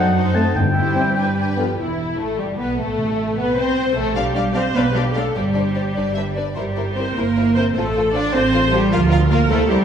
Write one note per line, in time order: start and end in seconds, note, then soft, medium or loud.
0.00 0.49 F#2 medium
0.00 0.35 F#3 medium
0.00 0.13 D#4 medium
0.00 0.14 A4 soft
0.00 0.13 C5 soft
0.00 0.36 F#5 medium
0.14 0.55 D#4 medium
0.14 0.56 A4 soft
0.14 0.55 C5 medium
0.34 0.42 A3 medium
0.34 0.44 A3 medium
0.34 0.42 C4 medium
0.34 0.57 A5 medium
0.34 0.55 A5 medium
0.55 1.13 G2 medium
0.55 1.10 G2 medium
0.55 1.57 G3 medium
0.55 1.59 G5 medium
0.55 1.57 G5 medium
0.76 1.17 E4 soft
0.76 1.15 G4 soft
0.76 1.17 C5 soft
0.94 1.03 E3 soft
0.94 1.02 C4 soft
1.16 1.72 G2 medium
1.16 1.35 D4 soft
1.16 1.38 G4 soft
1.16 1.36 B4 soft
1.36 1.58 D4 soft
1.36 1.79 G4 soft
1.36 1.78 B4 soft
1.57 1.65 D3 medium
1.57 1.67 F3 soft
1.57 1.65 B3 medium
1.57 1.66 F4 soft
1.77 2.16 E1 soft
1.77 2.18 E3 soft
1.77 2.15 E4 soft
1.77 2.18 E4 soft
1.77 2.17 E4 soft
2.18 2.39 A1 soft
2.18 2.38 A3 medium
2.18 2.39 A3 soft
2.18 2.39 A4 soft
2.38 2.59 G1 soft
2.38 2.59 G3 medium
2.38 2.59 G3 soft
2.38 2.60 G3 soft
2.38 2.46 G4 soft
2.58 2.78 B1 soft
2.58 2.78 B3 medium
2.58 2.68 B3 medium
2.58 2.78 B4 soft
2.78 3.38 A1 medium
2.78 3.38 A3 medium
2.78 3.37 A3 medium
2.78 3.38 A3 medium
2.78 3.37 A4 soft
2.98 3.54 C3 medium
3.37 3.58 B1 medium
3.37 3.57 B3 medium
3.37 3.58 B3 medium
3.37 3.57 B3 medium
3.37 3.57 B4 medium
3.56 3.97 C2 medium
3.56 3.95 C4 medium
3.56 3.96 C4 medium
3.56 3.97 C5 medium
3.95 4.16 A1 medium
3.95 4.03 A3 medium
3.95 4.16 A3 medium
3.95 4.17 A3 medium
3.95 4.16 A4 medium
4.16 4.69 B1 medium
4.16 4.56 G3 medium
4.16 4.24 D4 medium
4.16 4.55 G4 medium
4.16 4.25 D5 medium
4.16 4.24 F5 medium
4.35 4.43 D4 soft
4.35 4.43 D5 medium
4.35 4.44 F5 soft
4.54 4.63 C4 medium
4.54 4.62 D4 medium
4.54 4.76 C5 medium
4.54 4.62 D5 medium
4.54 4.63 F5 medium
4.75 5.28 B1 medium
4.75 4.83 B3 medium
4.75 4.84 D4 medium
4.75 4.95 B4 medium
4.75 4.84 D5 medium
4.75 4.83 F5 medium
4.94 5.02 G3 medium
4.94 5.03 D4 soft
4.94 5.15 G4 medium
4.94 5.04 D5 medium
4.94 5.03 F5 medium
5.15 5.23 A3 medium
5.15 5.23 D4 soft
5.15 5.36 A4 medium
5.15 5.24 D5 soft
5.15 5.23 F5 soft
5.34 5.89 G1 medium
5.34 6.33 G3 medium
5.34 5.43 D4 medium
5.34 6.36 G4 medium
5.34 5.43 C5 medium
5.34 5.43 D5 medium
5.54 5.63 D4 soft
5.54 5.63 C5 soft
5.54 5.62 D5 soft
5.75 5.83 D4 soft
5.75 5.83 C5 soft
5.75 5.83 D5 soft
5.95 6.50 G1 medium
5.95 6.05 D4 soft
5.95 6.05 B4 soft
5.95 6.14 D5 medium
6.14 6.25 D4 soft
6.14 6.25 B4 soft
6.14 6.22 E5 medium
6.35 6.45 D4 soft
6.35 6.44 B4 soft
6.35 6.55 D5 soft
6.54 7.09 G1 medium
6.54 6.93 G3 medium
6.54 6.64 E4 soft
6.54 6.94 G4 medium
6.54 6.64 A#4 soft
6.54 6.62 C5 soft
6.76 6.84 E4 soft
6.76 6.85 A#4 soft
6.76 6.84 C5 soft
6.96 7.16 C4 medium
6.96 7.06 E4 soft
6.96 7.06 A#4 soft
6.96 7.04 C5 soft
6.96 7.16 C5 medium
7.16 7.68 G1 medium
7.16 7.55 A#3 medium
7.16 7.25 E4 soft
7.16 7.56 A#4 medium
7.16 7.25 A#4 soft
7.16 7.25 C5 soft
7.37 7.45 E4 soft
7.37 7.44 A#4 soft
7.37 7.45 C5 soft
7.56 7.75 C4 medium
7.56 7.65 E4 soft
7.56 7.65 A#4 soft
7.56 7.64 C5 medium
7.56 7.64 C5 soft
7.75 8.27 A1 medium
7.75 8.14 A3 medium
7.75 7.84 F4 medium
7.75 8.14 A4 medium
7.75 7.85 A4 medium
7.75 7.83 C5 medium
7.94 8.04 F4 medium
7.94 8.04 A4 medium
7.94 8.02 C5 soft
8.13 8.33 D4 medium
8.13 8.23 F4 medium
8.13 8.22 A4 medium
8.13 8.21 C5 medium
8.13 8.34 D5 medium
8.33 8.86 A1 medium
8.33 8.73 C4 medium
8.33 8.42 F4 medium
8.33 8.42 A4 medium
8.33 8.72 C5 medium
8.33 8.42 C5 medium
8.52 8.61 F4 medium
8.52 8.60 A4 medium
8.52 8.62 C5 medium
8.71 8.92 G3 medium
8.71 8.79 F4 medium
8.71 8.93 G4 medium
8.71 8.79 A4 medium
8.71 8.80 C5 medium
8.91 9.45 D2 medium
8.91 9.32 F3 medium
8.91 8.99 F4 medium
8.91 9.31 F4 medium
8.91 8.99 A#4 medium
8.91 9.00 F5 medium
9.09 9.17 F4 medium
9.09 9.17 A#4 medium
9.09 9.20 F5 medium
9.30 9.39 A#3 loud
9.30 9.38 F4 medium
9.30 9.38 A#4 medium
9.30 9.51 A#4 medium
9.30 9.40 F5 medium
9.50 9.85 C2 medium
9.50 9.71 A3 loud
9.50 9.59 E4 medium
9.50 9.71 A4 medium
9.50 9.59 A#4 medium
9.50 9.58 C5 medium
9.70 9.85 G3 medium
9.70 9.78 E4 medium
9.70 9.85 G4 medium
9.70 9.78 A#4 medium
9.70 9.79 C5 medium